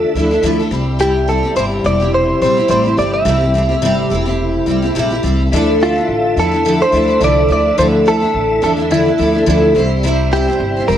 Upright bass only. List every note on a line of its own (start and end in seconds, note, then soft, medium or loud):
0.15 0.38 D2 medium
0.43 0.66 D2 medium
0.71 1.41 C2 medium
1.56 1.79 G1 medium
1.84 2.31 E1 medium
2.41 2.64 A#1 medium
2.69 2.93 A1 loud
2.98 3.21 G1 medium
3.25 3.72 C2 loud
3.82 4.05 G1 medium
4.11 4.57 E1 medium
4.66 4.90 C2 medium
4.96 5.19 A#1 medium
5.24 5.47 C2 medium
5.52 5.98 D2 loud
6.09 6.32 A1 medium
6.36 6.83 E2 medium
6.92 7.16 D2 loud
7.21 7.44 C2 loud
7.49 7.73 D2 medium
7.78 8.24 D2 loud
8.34 8.58 A1 medium
8.62 9.09 E2 medium
9.19 9.43 D2 medium
9.47 9.71 D2 loud
9.75 10.45 C2 loud
10.60 10.83 G1 medium
10.89 10.98 E1 medium